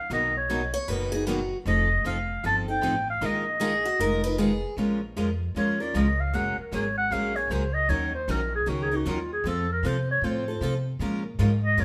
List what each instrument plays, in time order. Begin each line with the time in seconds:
Already playing: clarinet F5
0.10 upright bass B1, steel-string acoustic guitar B2 D#3 F#3 A#3 B3 D#4 F#4 A#4, clarinet D#5
0.37 clarinet C#5
0.50 steel-string acoustic guitar B2 D#3 F#3 A#3 B3 D#4 F#4 A#4
0.74 steel-string acoustic guitar C#5
0.88 upright bass F#1, steel-string acoustic guitar B2 D#3 F#3 A#3 B3 D#4 F#4 A#4 B4
1.12 steel-string acoustic guitar A#3 D#4 F#4 G#4
1.26 steel-string acoustic guitar B2 D#3 F#3 A#3 B3 D#4 F#4 A#4
1.66 upright bass F1, steel-string acoustic guitar F3 C4 D#4 A4, clarinet D#5
2.05 upright bass F1, steel-string acoustic guitar F3 C4 D#4 A4, clarinet F5
2.44 upright bass G1, steel-string acoustic guitar F3 C4 D#4 A4, clarinet A5
2.68 steel-string acoustic guitar C4 D#4 A4, clarinet G5
2.82 upright bass A1, steel-string acoustic guitar F3 C4 D#4 A4
3.10 clarinet F5
3.21 upright bass A#1, steel-string acoustic guitar D#3 G#3 D#4 F4 A#4
3.25 clarinet D#5
3.60 steel-string acoustic guitar D#3 G#3 D#4 F4 G#4 A#4
3.85 steel-string acoustic guitar F#4
3.99 upright bass F1, steel-string acoustic guitar D#3 G#3 D#4 F4 A#4
4.24 steel-string acoustic guitar D#4 F4 A#4 B4
4.38 steel-string acoustic guitar D#3 G#3 D#4 F4 G#4 A#4
4.77 upright bass A#1, steel-string acoustic guitar F3 G#3 C#4 F4 A#4
5.16 upright bass F2, steel-string acoustic guitar F3 G#3 C#4 F4 A#4
5.55 upright bass D#2, steel-string acoustic guitar F3 G#3 C#4 F4 A#4, clarinet C#5
5.80 steel-string acoustic guitar C#4 F4 A#4, clarinet D5
5.94 upright bass C#2, steel-string acoustic guitar F3 G#3 C#4 F4 A#4, clarinet D#5
6.20 clarinet F5
6.33 upright bass F#1, steel-string acoustic guitar F#3 G#3 A#3 C#4 G#4 A#4, clarinet F#5
6.57 clarinet A#4, muted upright bass stroke
6.72 upright bass G#1, steel-string acoustic guitar F#3 G#3 A#3 C#4 G#4 A#4, clarinet C#5
6.97 clarinet F#5
7.11 upright bass A#1, steel-string acoustic guitar F#3 G#3 A#3 C#4 G#4 A#4, clarinet F5
7.36 steel-string acoustic guitar A#3 C#4 G#4, clarinet C#5
7.50 upright bass C#2, steel-string acoustic guitar F#3 G#3 A#3 C#4 G#4 A#4, clarinet C5
7.74 clarinet D#5
7.89 upright bass D#2, steel-string acoustic guitar D#3 F#3 C#4 D#4 A#4, clarinet C#5
8.15 clarinet C5
8.28 upright bass A#1, steel-string acoustic guitar D#3 F#3 C#4 D#4 A#4, clarinet A#4
8.55 clarinet G#4
8.66 upright bass C#2, steel-string acoustic guitar D#3 F#3 C#4 D#4 A#4, clarinet F#4
8.82 clarinet G#4
8.91 steel-string acoustic guitar C#4 D#4 A#4
8.96 clarinet F#4
9.05 upright bass D#2, steel-string acoustic guitar D#3 F#3 C#4 D#4 A#4, clarinet F4
9.32 clarinet G#4
9.44 upright bass F2, steel-string acoustic guitar F3 C4 F4 A4, clarinet A4
9.72 clarinet A#4
9.83 upright bass C3, steel-string acoustic guitar F3 C4 F4 A4
9.87 clarinet C5
10.11 clarinet C#5
10.22 upright bass A2, steel-string acoustic guitar F3 C4 F4 A4, clarinet C5
10.48 steel-string acoustic guitar C4 F4 A4
10.61 upright bass C3, steel-string acoustic guitar F3 C4 F4 A4
10.99 upright bass A#2, steel-string acoustic guitar F3 G#3 C#4 F4 A#4
11.39 upright bass G#2, steel-string acoustic guitar F3 G#3 C#4 F4 A#4
11.64 clarinet D#5
11.77 upright bass F#2, steel-string acoustic guitar F3 G#3 C#4 F4 A#4, clarinet C#5